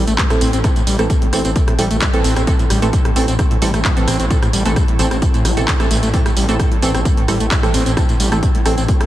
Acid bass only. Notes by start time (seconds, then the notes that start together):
0.07 A3
0.18 G2
0.30 A2
0.41 C4
0.53 C4
0.64 A2
0.76 A2
0.87 G3
0.99 A3
1.10 G2
1.22 A2
1.33 C4
1.45 C4
1.56 A2
1.68 A2
1.79 G3
1.91 A3
2.02 G2
2.14 A2
2.25 C4
2.37 C4
2.47 A2
2.59 A2
2.70 G3
2.82 A3
2.93 G2
3.05 A2
3.16 C4
3.28 C4
3.39 A2
3.51 A2
3.62 G3
3.74 A3
3.85 G2
3.97 A2
4.08 C4
4.20 C4
4.31 A2
4.42 A2
4.53 G3
4.65 A3
4.76 G2
4.88 A2
4.99 C4
5.11 C4
5.22 A2
5.34 A2
5.45 G3
5.57 B2
5.68 D3
5.80 A3
5.91 A3
6.03 A3
6.14 A2
6.26 A2
6.37 G3
6.49 A3
6.60 G2
6.72 A2
6.83 C4
6.95 C4
7.05 A2
7.17 A2
7.28 G3
7.40 A3
7.51 G2
7.63 A2
7.74 C4
7.86 C4
7.97 A2
8.09 A2
8.20 G3
8.32 A3
8.43 G2
8.55 A2
8.66 C4
8.78 C4
8.88 A2
9.01 A2